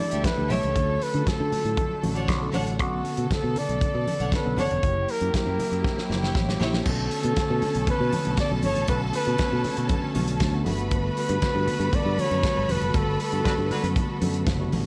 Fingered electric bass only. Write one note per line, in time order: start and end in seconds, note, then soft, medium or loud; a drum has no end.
0.13 0.23 D2 medium
0.38 0.48 D2 medium
0.51 0.61 B1 medium
0.64 0.74 C#2 medium
0.76 0.97 D2 loud
1.14 1.25 D3 medium
1.40 1.51 D3 medium
1.65 1.76 A2 medium
2.04 2.28 A1 medium
2.28 2.50 B1 medium
2.54 2.80 A1 medium
2.80 3.01 B1 loud
3.18 3.28 B2 medium
3.44 3.54 B2 loud
3.69 3.80 B1 medium
3.82 muted fingered electric bass stroke soft
3.95 4.05 B2 medium
4.20 4.30 B1 medium
4.46 4.56 B1 medium
4.59 4.69 F#1 medium
4.71 4.82 E1 loud
4.83 5.04 F#1 loud
5.21 5.32 F#2 loud
5.46 5.57 F#2 loud
5.72 5.83 F#2 medium
6.10 6.31 F#1 medium
6.35 6.57 A1 medium
6.61 6.82 A#1 medium
6.86 7.07 B1 loud
7.24 7.35 B2 loud
7.50 7.61 B2 loud
7.75 7.86 B1 medium
7.88 muted fingered electric bass stroke soft
8.00 8.11 B2 medium
8.27 8.37 B1 medium
8.51 8.62 B1 loud
8.64 8.75 G1 medium
8.76 8.87 A1 loud
8.89 9.10 B1 loud
9.27 9.38 B2 loud
9.39 muted fingered electric bass stroke medium
9.53 9.63 B2 loud
9.78 9.88 B2 medium
10.16 10.37 B1 loud
10.40 10.62 D2 loud
10.66 11.09 G1 loud
11.29 11.40 G2 loud
11.55 11.66 G2 loud
11.80 11.91 G2 medium
12.05 12.16 G2 loud
12.31 12.42 F#2 medium
12.57 12.67 G1 loud
12.70 12.80 E1 medium
12.82 12.93 F#1 loud
12.94 13.16 G1 loud
13.33 13.43 G2 medium
13.58 13.69 G2 loud
13.83 13.94 F#2 medium
14.22 14.43 F#2 loud
14.47 14.68 F#1 loud
14.72 14.86 A1 medium